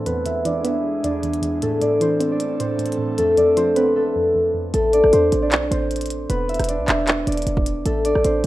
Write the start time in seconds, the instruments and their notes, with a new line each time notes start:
Already playing: analog synth pad E3, harp A3 C4 D4 A4 C5 D5
0.06 synth pluck E2, analog synth pad G#3 B3 G#4, harp B3 B4, closed hi-hat
0.26 synth pluck E2, harp E4 E5, closed hi-hat
0.45 synth pluck E3, harp D4 D5, closed hi-hat
0.64 synth pluck B3, harp E4 E5, closed hi-hat
1.04 synth pluck E2, harp D4 D5, closed hi-hat
1.23 synth pluck E2, closed hi-hat
1.34 closed hi-hat
1.42 synth pluck E2, closed hi-hat
1.62 synth pluck A2, analog synth pad A3 C4 A4, harp A3 A4, closed hi-hat
1.82 synth pluck A2, harp D4 D5, closed hi-hat
2.01 synth pluck E3, harp C4 C5, closed hi-hat
2.20 synth pluck C4, closed hi-hat
2.31 harp D4 D5
2.40 closed hi-hat
2.60 synth pluck A2, harp C4 C5, closed hi-hat
2.79 synth pluck A2, closed hi-hat
2.86 closed hi-hat
2.92 closed hi-hat
2.98 synth pluck A2
3.18 synth pluck F2, analog synth pad F3, harp A3 A4, closed hi-hat
3.37 synth pluck F2, harp D4 D5, closed hi-hat
3.57 synth pluck F3, harp C4 C5, closed hi-hat
3.76 harp B3 B4, synth pluck C4, closed hi-hat
3.96 harp A3 A4
4.16 synth pluck F2
4.35 synth pluck F2
4.54 synth pluck F2
4.74 808-style bass A1, harp A3 A4, closed hi-hat
4.93 harp D4 D5, closed hi-hat
5.04 808-style bass A1, cross-stick
5.13 808-style bass E2, harp C4 C5, closed hi-hat
5.32 808-style bass A1, closed hi-hat
5.42 harp D4 D5
5.52 808-style bass B1, clap, closed hi-hat
5.71 808-style bass A1, harp C4 C5, closed hi-hat
5.91 closed hi-hat
5.96 closed hi-hat
6.01 closed hi-hat
6.06 closed hi-hat
6.10 closed hi-hat
6.30 808-style bass E1, harp B3 B4, closed hi-hat
6.49 harp E4 E5, closed hi-hat
6.54 closed hi-hat
6.59 808-style bass E1, cross-stick, closed hi-hat
6.64 closed hi-hat
6.69 harp D4 D5, closed hi-hat
6.79 808-style bass B1
6.88 808-style bass E1, harp E4 E5, clap, closed hi-hat
7.08 clap, closed hi-hat
7.27 808-style bass E1, harp D4 D5, closed hi-hat
7.32 closed hi-hat
7.37 closed hi-hat
7.42 closed hi-hat
7.47 808-style bass E1, closed hi-hat
7.57 kick
7.66 closed hi-hat
7.86 808-style bass A1, harp A3 A4, closed hi-hat
8.05 harp D4 D5, closed hi-hat
8.15 808-style bass A1, cross-stick
8.25 808-style bass A1, harp C4 C5, closed hi-hat